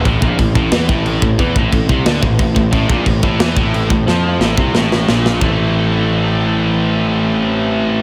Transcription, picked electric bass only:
0.05 A1
0.22 A#1
0.39 A1
0.55 A1
0.72 E2
0.88 A1
1.22 A1
1.39 E2
1.56 A1
1.72 A1
1.89 C2
2.06 D2
2.22 A1
2.39 A1
2.56 A1
2.72 A1
2.89 A#1
3.06 A1
3.22 A1
3.40 E2
3.56 A1
3.90 A1
4.06 F2
4.39 A1
4.57 C2
4.75 A1
5.08 A#1
5.41 A1

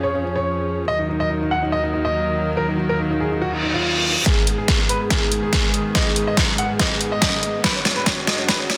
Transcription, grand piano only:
0.03 C#5
0.15 C#4
0.24 C#4
0.36 C#5
0.88 D#5
0.99 D#4
1.09 D#4
1.20 D#5
1.30 D#4
1.41 D#4
1.51 F#5
1.62 D#4
1.72 D#5
1.84 D#4
1.93 D#4
2.05 D#5
2.57 A#4
2.68 D#4
2.78 D#4
2.89 A#4
2.99 D#4
3.10 D#4
3.20 G#4
3.32 D#4
3.42 F#4
3.53 D#4
3.63 D#4
3.74 F4
4.26 G#4
4.37 G#3
4.47 G#3
4.58 G#4
4.68 G#3
4.79 G#3
4.89 B4
5.01 G#3
5.10 G#4
5.22 G#3
5.32 G#3
5.43 G#4
5.95 D#5
6.06 G#4
6.16 G#4
6.27 D#5
6.49 G#4
6.58 F#5
6.70 G#4
6.79 D#5
6.91 G#4
7.01 G#4
7.12 D#5
7.64 B4
7.75 C#4
7.85 C#4
7.96 B4
8.06 C#4
8.17 C#4
8.27 D#5
8.38 C#4
8.48 B4
8.59 C#4
8.70 C#4

